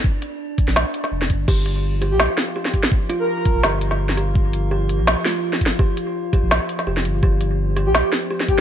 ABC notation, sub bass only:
X:1
M:4/4
L:1/16
Q:"Swing 16ths" 1/4=167
K:Gm
V:1 name="Sub bass" clef=bass
z6 z B,,,2 z3 F,,,2 G,,,2 | G,,,6- G,,, B,,,2 z6 z | z6 z B,,, G,,,8- | G,,,6- G,,, B,,,2 z6 z |
z6 z B,,,2 z3 F,,,2 G,,,2 | G,,,6- G,,, B,,,2 z6 z |]